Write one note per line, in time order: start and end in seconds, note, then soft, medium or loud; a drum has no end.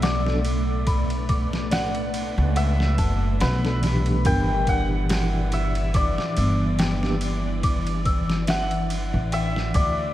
0.00 2.33 B1 medium
0.00 4.21 A3 medium
0.00 0.83 A4 medium
0.00 4.21 D5 loud
0.00 2.49 D5 medium
0.00 1.49 E5 loud
0.00 0.02 F#5 loud
0.00 0.49 F#5 loud
0.00 0.83 F#5 medium
0.00 0.87 B5 medium
0.00 snare loud
0.00 ride medium
0.25 0.38 F#3 medium
0.25 0.38 B3 medium
0.25 0.39 D4 medium
0.25 0.39 A4 loud
0.25 snare soft
0.44 ride medium
0.87 4.22 B4 medium
0.87 1.26 B5 medium
0.87 kick loud
0.87 ride medium
1.10 ride soft
1.29 1.68 D6 medium
1.29 kick medium
1.29 ride medium
1.53 snare soft
1.71 2.52 D5 medium
1.71 3.87 F#5 medium
1.71 snare loud
1.71 ride medium
1.95 ride soft
2.14 ride medium
2.38 2.95 C#2 loud
2.56 4.86 E5 loud
2.56 2.82 F#5 medium
2.56 ride medium
2.80 snare soft
2.98 3.36 F#1 loud
2.98 3.37 A5 medium
2.98 kick medium
2.98 ride medium
3.40 4.22 B1 loud
3.40 6.15 B4 loud
3.40 4.21 F#5 medium
3.40 snare loud
3.40 ride medium
3.63 3.76 F#3 medium
3.63 3.76 B3 medium
3.63 3.77 D4 medium
3.63 3.77 A4 medium
3.63 snare soft
3.81 6.96 A#2 medium
3.81 6.95 E3 medium
3.81 6.97 D4 medium
3.81 snare soft
3.81 ride medium
3.86 6.98 G4 medium
4.06 ride soft
4.25 6.13 G1 loud
4.25 10.14 E3 medium
4.25 7.60 E4 medium
4.25 4.66 A#4 loud
4.25 10.14 D5 medium
4.25 4.75 G5 loud
4.25 kick loud
4.25 ride medium
4.67 6.83 F#5 loud
4.67 kick medium
4.67 ride medium
5.09 5.50 G4 loud
5.09 snare loud
5.09 ride medium
5.52 7.83 E5 medium
5.52 ride medium
5.75 ride soft
5.94 8.42 D5 medium
5.94 6.75 D6 medium
5.94 kick loud
5.94 ride medium
6.18 snare medium
6.37 9.09 G1 loud
6.37 ride medium
6.79 7.60 G5 medium
6.79 snare loud
6.79 ride medium
7.01 7.14 E3 medium
7.01 7.14 A#3 medium
7.01 7.15 D4 medium
7.01 7.15 G4 loud
7.01 snare soft
7.21 ride medium
7.63 8.02 D6 medium
7.63 kick loud
7.63 ride medium
7.87 ride soft
8.05 8.44 E6 medium
8.05 kick medium
8.05 ride medium
8.30 snare soft
8.47 9.29 E5 loud
8.47 10.14 F#5 loud
8.47 snare loud
8.47 ride medium
8.71 ride soft
8.90 ride medium
9.14 9.71 A1 loud
9.32 10.14 E5 loud
9.32 9.58 G5 medium
9.32 ride medium
9.56 snare soft
9.74 10.12 D2 medium
9.74 10.14 D5 medium
9.74 10.13 D6 medium
9.74 kick loud
9.74 ride medium